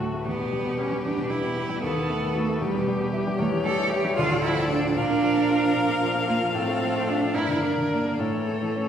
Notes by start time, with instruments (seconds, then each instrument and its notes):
Already playing: grand piano D2 A2 A3, viola F#4, violin A4
0.00 grand piano F#4
0.14 grand piano A3
0.25 grand piano E2, cello B3, viola G4, violin B4
0.39 grand piano B2
0.52 grand piano G3
0.65 grand piano B2
0.78 cello C#4, grand piano G4
0.92 grand piano G3
1.03 grand piano E2, cello D4
1.17 grand piano B2
1.30 grand piano G3, cello E4
1.43 grand piano B2
1.56 grand piano G4
1.69 grand piano G3
1.83 grand piano D#2, cello B3, viola A4
1.97 grand piano D#3
2.10 grand piano A3
2.23 grand piano D#3
2.35 cello A3, grand piano F#4
2.49 grand piano A3
2.61 grand piano E2, cello G3, viola G4
2.75 grand piano B2
2.88 grand piano G3
3.01 grand piano B2
3.13 grand piano E4
3.27 grand piano G3
3.39 grand piano E2, cello A3, violin C#5
3.53 grand piano E3
3.65 grand piano G3, cello A4
3.79 grand piano E3
3.90 grand piano E4, cello G4
4.05 grand piano G3
4.16 grand piano D2, cello F4, viola A4, violin D5
4.32 grand piano A2
4.43 grand piano F3, cello E4
4.58 grand piano A2
4.69 cello D4, grand piano F4
4.83 grand piano F3
4.96 grand piano A#2, cello D4, viola A#4, violin F5
5.10 grand piano A#3
5.22 grand piano F3
5.36 grand piano A#3
5.49 grand piano F4
5.62 grand piano F3
5.75 grand piano A#2
5.89 grand piano A#3
6.01 grand piano F3
6.14 grand piano A#3
6.28 cello A#3, grand piano F4
6.41 grand piano F3
6.54 grand piano A2, cello C4, viola A4
6.68 grand piano A3
6.81 grand piano F3
6.95 grand piano A3
7.08 cello D4, grand piano F4
7.21 grand piano F3
7.34 grand piano G2, cello E4, viola A#4, violin D5
7.48 grand piano D3
7.62 grand piano A#3, cello D4
7.77 grand piano D3
7.90 cello A#3, grand piano D4
8.05 grand piano A#3
8.18 grand piano A2, cello A3, viola A4, violin C#5
8.33 grand piano E3
8.48 grand piano A3
8.62 grand piano E3
8.76 grand piano C#4